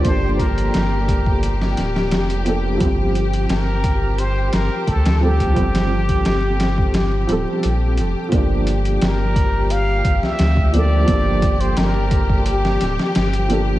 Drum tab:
HH |x-xxx-x-x-x-xxx-|x-xxx-x-x-x-xx-x|xx-xx-x-x-x-x-x-|x-xxx-x-x-x-x-x-|
SD |----o----oooo---|----o-----o--o--|-o--o-o-o-------|----o------oo---|
BD |o-o---oo--------|o-----o-----o--o|o--o---o--------|o-----o---o--o--|

HH |x-xxx-x-x-x-xxx-|
SD |----o----oooo---|
BD |o-o---oo--------|